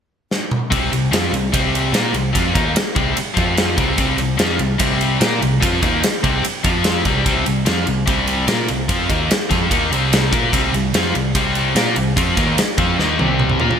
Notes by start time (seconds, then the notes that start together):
0.31 snare
0.51 mid tom
0.70 C2 C3 G3 C4, kick, ride
0.91 C2 C3 G3, ride
1.11 F2 F3 C4 F4, snare, ride
1.32 C2 C3 G3, ride
1.52 C2 C3 G3 C4, kick, ride
1.75 ride
1.92 A#2 A#3 F4 A#4, snare, ride
2.13 C2 C3 G3, ride
2.33 F2 F3 C4 F4, kick, ride
2.54 D#2 D#3 A#3 D#4, kick, ride
2.74 muted overdriven electric guitar stroke, muted picked electric bass stroke, muted distorted electric guitar stroke, snare, ride
2.95 C2 C3 G3 C4, kick, ride
3.16 muted overdriven electric guitar stroke, muted picked electric bass stroke, muted distorted electric guitar stroke, ride
3.34 F2 F3 C4 F4, kick, ride
3.39 C4 F4
3.57 snare, ride
3.76 C2 C3 G3 C4, kick, ride
3.97 C2 C3 G3 C4, kick, ride
4.17 C2 C3 G3, ride
4.37 F2 F3 C4 F4, snare, ride
4.58 C2 C3 G3, ride
4.78 C2 C3 G3 C4, kick, ride
5.01 ride
5.19 A#2 A#3 F4 A#4, snare, ride
5.41 C2 C3 G3, ride
5.60 F2 F3 C4 F4, kick, ride
5.82 D#2 D#3 A#3 D#4, kick, ride
6.03 muted overdriven electric guitar stroke, muted picked electric bass stroke, muted distorted electric guitar stroke, snare, ride
6.23 C2 C3 G3 C4, kick, ride
6.44 muted distorted electric guitar stroke, muted picked electric bass stroke, muted overdriven electric guitar stroke, ride
6.63 F2 F3 C4 F4, kick, ride
6.84 snare, ride
7.05 C2 C3 G3 C4, kick, ride
7.25 C2 C3 G3 C4, kick, ride
7.45 C2 C3 G3, ride
7.65 F2 F3 C4 F4, snare, ride
7.86 C2 C3 G3, ride
8.06 C2 C3 G3 C4, kick, ride
8.27 ride
8.47 A#2 A#3 F4 A#4, snare, ride
8.68 C2 C3 G3, ride
8.88 F2 F3 C4 F4, kick, ride
9.08 D#2 D#3 A#3 D#4, kick, ride
9.29 muted picked electric bass stroke, muted overdriven electric guitar stroke, muted distorted electric guitar stroke, snare, ride
9.50 F2 F3 C4 F4, kick, ride
9.70 D#2 D#3 A#3 D#4, kick, ride
9.91 C2 C3 G3 C4, ride
10.13 snare, ride
10.32 A#2 A#3 F4 A#4, kick, ride
10.53 C2 C3 G3 C4, kick, ride
10.73 C2 C3 G3, ride
10.94 F2 F3 C4 F4, snare, ride
11.15 C2 C3 G3, ride
11.35 C2 C3 G3 C4, kick, ride
11.55 ride
11.75 A#2 A#3 F4 A#4, snare, ride
11.96 C2 C3 G3, ride
12.16 F2 F3 C4 F4, kick, ride
12.37 D#2 D#3 A#3 D#4, kick, ride
12.58 muted distorted electric guitar stroke, muted overdriven electric guitar stroke, muted picked electric bass stroke, snare, ride
12.78 F2 F3 C4 F4, kick, ride
12.98 D#2 D#3 A#3 D#4, snare
13.18 C2 C3 G3 C4, high tom
13.40 mid tom
13.50 mid tom
13.60 A#2 A#3 F4 A#4, floor tom
13.71 floor tom